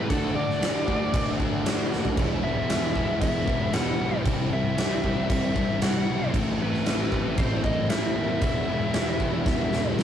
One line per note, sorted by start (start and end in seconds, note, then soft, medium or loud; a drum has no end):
0.00 2.13 A4 medium
0.09 0.33 D2 loud
0.09 0.60 D3 loud
0.09 0.38 A3 loud
0.09 0.36 D4 loud
0.09 0.34 F#4 loud
0.09 0.34 A4 loud
0.09 2.16 D5 medium
0.09 2.16 F#5 medium
0.09 2.15 D6 medium
0.09 kick loud
0.09 crash medium
0.35 0.58 D2 medium
0.35 0.62 A3 medium
0.35 0.63 D4 medium
0.35 0.64 F#4 medium
0.35 1.35 D5 loud
0.50 snare soft
0.61 0.84 D2 loud
0.61 0.89 D3 medium
0.61 0.89 A3 medium
0.61 0.87 D4 medium
0.61 snare loud
0.61 crash medium
0.65 0.86 F#4 medium
0.87 1.11 D2 medium
0.87 1.11 D3 medium
0.87 1.13 A3 medium
0.87 1.14 D4 loud
0.87 1.15 F#4 loud
0.87 kick medium
1.12 1.37 D2 loud
1.12 1.64 D3 medium
1.12 1.42 A3 medium
1.12 1.40 D4 medium
1.12 1.38 F#4 medium
1.12 kick loud
1.12 crash medium
1.39 1.62 D2 loud
1.39 1.65 A3 medium
1.39 1.66 D4 medium
1.39 1.67 F#4 medium
1.39 kick medium
1.65 1.88 D2 loud
1.65 2.16 D3 medium
1.65 1.94 A3 loud
1.65 1.92 D4 loud
1.65 1.90 F#4 loud
1.65 snare loud
1.65 crash medium
1.91 2.14 D#2 medium
1.91 2.18 A3 medium
1.91 2.17 D4 medium
1.91 2.16 F#4 medium
1.91 snare medium
2.05 floor tom loud
2.17 2.40 E1 loud
2.17 2.69 E3 loud
2.17 2.46 G#3 loud
2.17 2.44 B3 loud
2.17 2.43 E4 loud
2.17 4.23 G#4 medium
2.17 4.23 B4 medium
2.17 10.03 E5 medium
2.17 4.23 B5 medium
2.17 kick loud
2.17 crash medium
2.43 2.66 E1 loud
2.43 2.70 G#3 medium
2.43 2.71 B3 medium
2.43 2.73 E4 medium
2.43 3.20 E5 loud
2.69 2.92 E1 medium
2.69 2.98 E3 medium
2.69 2.96 G#3 medium
2.69 2.94 B3 loud
2.69 2.94 E4 medium
2.69 snare loud
2.69 crash medium
2.94 3.18 E1 loud
2.94 3.20 E3 medium
2.94 3.20 G#3 loud
2.94 3.21 B3 loud
2.94 3.23 E4 loud
2.94 kick medium
3.20 3.44 E1 loud
3.20 3.72 E3 medium
3.20 3.48 G#3 medium
3.20 3.46 B3 medium
3.20 3.45 E4 medium
3.20 3.75 E5 loud
3.20 kick loud
3.20 crash medium
3.46 3.70 E1 loud
3.46 3.73 G#3 medium
3.46 3.73 B3 medium
3.46 3.75 E4 medium
3.46 kick loud
3.72 3.96 E1 loud
3.72 4.25 E3 loud
3.72 4.01 G#3 loud
3.72 3.99 B3 loud
3.72 3.98 E4 loud
3.72 4.22 F#5 loud
3.72 snare loud
3.72 crash medium
3.98 4.23 B1 medium
3.98 4.25 G#3 medium
3.98 4.24 B3 medium
3.98 4.27 E4 medium
4.24 4.48 C2 loud
4.24 4.77 C3 loud
4.24 4.76 E3 loud
4.24 4.52 G3 loud
4.24 8.37 C4 medium
4.24 4.52 C4 loud
4.24 4.50 E4 loud
4.24 6.30 G4 medium
4.24 kick loud
4.24 crash medium
4.50 4.74 C2 medium
4.50 4.76 G3 medium
4.50 4.78 C4 medium
4.50 4.79 E4 medium
4.50 5.26 E5 loud
4.76 5.00 C2 medium
4.76 5.05 E3 medium
4.76 5.03 G3 medium
4.76 5.03 C4 medium
4.76 5.02 E4 loud
4.76 snare loud
4.76 crash medium
5.03 5.26 C2 loud
5.03 5.57 C3 medium
5.03 5.28 E3 medium
5.03 5.29 G3 medium
5.03 5.30 C4 loud
5.03 5.32 E4 loud
5.03 kick medium
5.29 5.52 C2 loud
5.29 6.07 C3 loud
5.29 5.81 E3 medium
5.29 5.57 G3 medium
5.29 5.55 C4 medium
5.29 5.54 E4 medium
5.29 5.78 E5 loud
5.29 kick loud
5.29 crash medium
5.54 5.79 C2 loud
5.54 5.82 G3 medium
5.54 5.82 C4 medium
5.54 5.84 E4 medium
5.54 kick medium
5.81 6.05 C2 loud
5.81 6.31 C3 loud
5.81 6.34 E3 loud
5.81 6.09 G3 loud
5.81 6.08 C4 loud
5.81 6.07 E4 loud
5.81 6.31 F#5 loud
5.81 snare loud
5.81 crash medium
6.07 6.31 B1 loud
6.07 6.33 G3 medium
6.07 6.32 C4 medium
6.07 6.36 E4 medium
6.33 6.56 A1 loud
6.33 6.85 A2 loud
6.33 6.84 E3 loud
6.33 6.61 A3 loud
6.33 6.60 C4 loud
6.33 6.59 E4 loud
6.33 8.39 A4 medium
6.33 kick loud
6.33 crash medium
6.59 6.83 A1 loud
6.59 6.85 A3 medium
6.59 6.86 C4 medium
6.59 6.88 E4 medium
6.59 7.35 B4 loud
6.74 snare soft
6.85 7.09 A1 loud
6.85 7.14 E3 loud
6.85 7.12 A3 medium
6.85 7.11 C4 medium
6.85 7.11 E4 loud
6.85 snare loud
6.85 crash medium
7.11 7.34 A1 loud
7.11 7.65 A2 medium
7.11 7.37 E3 medium
7.11 7.38 A3 loud
7.11 7.39 C4 loud
7.11 7.40 E4 loud
7.11 kick medium
7.37 7.60 A1 loud
7.37 8.15 A2 loud
7.37 7.90 E3 medium
7.37 7.67 A3 medium
7.37 7.65 C4 medium
7.37 7.62 C5 loud
7.37 kick loud
7.37 crash medium
7.41 7.64 E4 medium
7.64 7.87 A1 loud
7.64 7.90 A3 medium
7.64 7.91 C4 medium
7.64 7.92 E4 medium
7.64 7.88 D#5 loud
7.64 kick loud
7.89 8.13 A1 medium
7.89 8.40 A2 loud
7.89 8.41 E3 loud
7.89 8.18 A3 loud
7.89 8.17 C4 loud
7.89 8.15 E4 loud
7.89 8.41 E5 loud
7.89 snare loud
7.89 crash medium
8.16 8.39 D#2 loud
8.16 8.42 A3 medium
8.16 8.41 C4 medium
8.16 8.45 E4 medium
8.41 8.64 E1 loud
8.41 8.93 E3 loud
8.41 8.70 G#3 loud
8.41 8.69 B3 loud
8.41 8.67 E4 loud
8.41 10.03 G#4 medium
8.41 10.03 B4 medium
8.41 9.94 E5 loud
8.41 10.03 B5 medium
8.41 kick loud
8.41 crash medium
8.68 8.91 E1 loud
8.68 8.94 G#3 medium
8.68 8.95 B3 medium
8.68 8.96 E4 medium
8.93 9.16 E1 loud
8.93 9.21 E3 medium
8.93 9.21 G#3 medium
8.93 9.19 B3 medium
8.93 9.18 E4 medium
8.93 snare loud
8.93 crash medium
9.19 9.43 E1 loud
9.19 9.43 E3 medium
9.19 9.45 G#3 medium
9.19 9.46 B3 loud
9.19 9.47 E4 loud
9.19 kick medium
9.44 9.68 E1 loud
9.44 9.96 E3 medium
9.44 9.74 G#3 medium
9.44 9.72 B3 medium
9.44 9.70 E4 medium
9.44 kick loud
9.44 snare medium
9.71 9.94 E1 loud
9.71 9.98 B3 medium
9.71 9.99 E4 medium
9.71 snare medium
9.75 9.97 G#3 medium
9.97 10.03 E1 medium
9.97 10.03 E3 loud
9.97 10.03 G#3 loud
9.97 10.03 B3 loud
9.97 snare loud